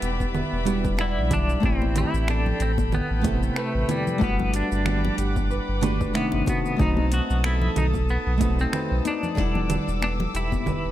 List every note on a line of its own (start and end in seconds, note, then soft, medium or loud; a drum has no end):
0.00 0.43 E1 medium
0.00 0.62 G3 loud
0.00 1.61 G3 medium
0.00 1.04 B3 loud
0.00 1.63 E4 loud
0.00 0.66 G4 medium
0.00 0.34 B4 loud
0.00 0.65 B4 loud
0.00 1.61 E5 medium
0.00 0.64 F#5 medium
0.00 4.17 B5 medium
0.00 1.61 D6 medium
0.00 closed hi-hat medium
0.00 shaker medium
0.20 kick medium
0.20 shaker soft
0.34 2.39 B4 medium
0.34 low conga medium
0.34 shaker soft
0.53 1.19 E1 medium
0.65 0.95 G3 medium
0.65 0.95 D4 medium
0.65 0.95 E4 medium
0.65 0.96 F#4 medium
0.65 1.95 G4 medium
0.65 0.96 B4 medium
0.65 closed hi-hat medium
0.65 shaker medium
0.85 kick loud
0.85 shaker soft
0.97 1.59 G3 loud
0.97 1.59 D4 medium
0.97 1.60 E4 medium
0.97 1.33 E4 medium
0.97 1.60 D5 loud
0.97 1.60 F#5 medium
0.97 finger snap loud
0.97 shaker soft
1.17 1.56 B1 loud
1.31 1.65 D4 loud
1.31 3.15 D5 medium
1.31 kick loud
1.31 closed hi-hat medium
1.31 low conga medium
1.31 shaker medium
1.49 shaker soft
1.60 2.05 A1 loud
1.60 3.20 A3 medium
1.60 3.20 C4 medium
1.60 3.21 E4 medium
1.60 3.88 E4 medium
1.60 4.19 A4 medium
1.60 4.19 G5 medium
1.60 kick loud
1.60 shaker soft
1.64 1.98 C4 medium
1.64 3.22 G4 medium
1.64 3.23 B4 medium
1.82 high conga medium
1.96 2.30 E4 loud
1.96 4.27 G4 medium
1.96 closed hi-hat medium
1.96 low conga medium
1.96 shaker medium
2.14 2.53 A1 loud
2.14 shaker soft
2.27 2.62 D4 loud
2.27 4.47 A4 medium
2.27 finger snap medium
2.27 high conga medium
2.27 shaker soft
2.46 low conga medium
2.60 3.01 A1 loud
2.60 2.71 C4 medium
2.60 closed hi-hat medium
2.60 shaker medium
2.78 kick medium
2.78 high conga medium
2.78 shaker soft
2.92 3.59 B3 medium
2.92 low conga medium
2.92 shaker soft
3.10 3.50 A1 medium
3.21 4.17 C3 medium
3.21 4.16 A3 medium
3.21 4.18 E4 medium
3.21 kick loud
3.21 closed hi-hat medium
3.21 high conga medium
3.21 shaker medium
3.26 4.19 G4 medium
3.26 4.19 A4 medium
3.43 shaker soft
3.56 3.91 A3 medium
3.56 5.50 B4 loud
3.56 finger snap medium
3.56 shaker soft
3.75 3.85 A1 medium
3.89 4.23 G3 medium
3.89 6.50 E4 loud
3.89 closed hi-hat medium
3.89 high conga medium
3.89 low conga medium
3.89 shaker medium
4.07 low conga medium
4.07 shaker soft
4.18 4.63 G1 loud
4.18 6.45 G3 medium
4.18 5.78 A3 loud
4.18 5.78 D4 medium
4.18 5.24 F#4 loud
4.18 5.79 F#5 medium
4.18 6.45 F#5 medium
4.18 6.45 B5 medium
4.18 6.45 D6 medium
4.18 kick loud
4.18 shaker soft
4.22 5.80 G3 medium
4.22 4.56 B3 medium
4.22 5.80 B4 loud
4.40 high conga medium
4.40 low conga medium
4.54 5.15 D4 medium
4.54 closed hi-hat loud
4.54 shaker medium
4.72 5.11 G1 loud
4.72 shaker soft
4.86 finger snap medium
4.86 high conga medium
4.86 low conga medium
4.86 shaker soft
5.05 muted conga medium
5.05 low conga medium
5.18 5.60 G1 loud
5.18 6.53 G4 medium
5.18 closed hi-hat medium
5.18 shaker medium
5.36 kick medium
5.36 high conga loud
5.36 shaker soft
5.50 7.55 B4 medium
5.50 shaker soft
5.69 6.08 G1 medium
5.81 6.11 A3 medium
5.81 6.11 D4 medium
5.81 6.85 D4 medium
5.81 6.12 F#4 medium
5.81 6.12 G4 medium
5.81 6.12 B4 loud
5.81 closed hi-hat medium
5.81 high conga medium
5.81 low conga medium
5.81 shaker medium
6.01 kick loud
6.01 shaker soft
6.14 6.76 C3 medium
6.14 6.76 D#3 medium
6.14 6.75 A3 loud
6.14 6.48 B3 medium
6.14 6.76 F#5 medium
6.14 finger snap medium
6.14 shaker soft
6.32 6.43 G1 medium
6.32 muted conga medium
6.46 6.81 B3 loud
6.46 7.11 F#4 loud
6.46 10.92 A4 medium
6.46 9.35 A5 medium
6.46 9.35 D#6 medium
6.46 kick loud
6.46 closed hi-hat medium
6.46 high conga medium
6.46 shaker medium
6.66 shaker soft
6.77 7.21 B1 loud
6.77 8.36 A3 medium
6.77 8.37 C4 medium
6.77 9.04 D#4 loud
6.77 8.37 D#5 medium
6.77 kick loud
6.77 low conga medium
6.77 shaker soft
6.81 7.14 D#4 loud
6.81 8.38 F#4 medium
6.81 8.39 B4 medium
6.97 high conga medium
7.12 9.55 F#4 medium
7.12 7.45 F#4 loud
7.12 closed hi-hat medium
7.12 shaker medium
7.30 7.69 B1 loud
7.30 shaker soft
7.44 7.78 E4 loud
7.44 9.63 A4 medium
7.44 finger snap loud
7.44 high conga medium
7.44 shaker soft
7.62 low conga medium
7.76 8.18 B1 loud
7.76 7.86 D#4 loud
7.76 closed hi-hat medium
7.76 low conga medium
7.76 shaker medium
7.94 kick medium
7.94 high conga medium
7.94 shaker soft
8.09 8.61 B3 medium
8.09 shaker soft
8.26 8.66 B1 medium
8.38 9.33 A3 medium
8.38 9.33 C4 medium
8.38 9.34 D#4 medium
8.38 kick loud
8.38 closed hi-hat medium
8.38 high conga medium
8.38 shaker medium
8.42 9.35 F#4 medium
8.42 9.35 A4 loud
8.59 9.03 C4 medium
8.59 shaker soft
8.73 10.66 B4 loud
8.73 finger snap loud
8.73 low conga medium
8.73 shaker soft
8.91 9.01 B1 medium
9.05 10.03 D4 loud
9.05 9.43 D#4 loud
9.05 closed hi-hat medium
9.05 high conga medium
9.05 shaker medium
9.23 low conga medium
9.23 shaker soft
9.35 9.79 E1 loud
9.35 10.92 G3 loud
9.35 9.40 D4 medium
9.35 10.92 E4 loud
9.35 10.92 D6 medium
9.35 10.92 E6 medium
9.35 kick loud
9.35 shaker soft
9.39 10.92 B4 loud
9.39 10.92 F#5 medium
9.55 high conga medium
9.55 low conga medium
9.70 closed hi-hat loud
9.70 muted conga soft
9.70 low conga medium
9.70 shaker medium
9.88 10.27 E1 loud
9.88 shaker soft
10.02 10.12 D4 medium
10.02 finger snap loud
10.02 high conga medium
10.02 shaker soft
10.20 muted conga medium
10.20 low conga loud
10.34 10.76 E1 loud
10.34 10.92 E4 medium
10.34 10.92 G4 medium
10.34 closed hi-hat medium
10.34 shaker medium
10.52 kick medium
10.52 high conga medium
10.52 shaker soft
10.66 10.92 B4 medium
10.66 kick medium
10.66 low conga medium
10.66 shaker soft
10.84 10.92 E1 medium